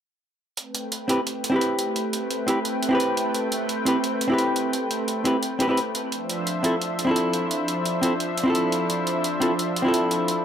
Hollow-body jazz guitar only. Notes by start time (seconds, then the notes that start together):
1.08 C4 E4 G4 B4
1.50 C4 E4
1.54 G4 B4
2.47 C4 E4 G4 B4
2.89 C4 E4
2.93 G4 B4
3.85 C4 E4 G4 B4
4.28 C4 E4
4.32 G4 B4
5.24 C4 E4 G4 B4
5.59 C4 E4 G4 B4
5.68 C4 E4 G4 B4
6.63 C4 E4 F4 A4
7.05 C4 E4
7.09 F4 A4
8.01 C4 E4 F4 A4
8.44 C4 E4
8.48 F4 A4
9.40 C4 E4 F4 A4
9.82 C4 E4
9.86 F4 A4